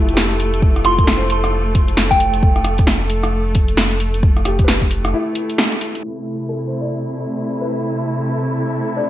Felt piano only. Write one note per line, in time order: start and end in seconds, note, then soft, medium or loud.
0.00 1.30 E4 medium
0.00 0.83 F4 medium
0.00 0.12 G4 medium
0.00 0.17 A4 medium
0.00 0.77 B4 medium
0.14 1.45 G4 medium
0.85 2.20 F4 medium
1.04 2.35 A4 medium
1.17 2.47 C5 medium
4.46 5.81 G4 medium
4.64 5.96 B4 medium
5.13 6.22 E4 medium
6.49 7.84 A4 medium
6.67 7.99 C5 soft
6.81 8.11 D5 soft
7.61 8.97 B4 medium
8.97 9.10 D4 medium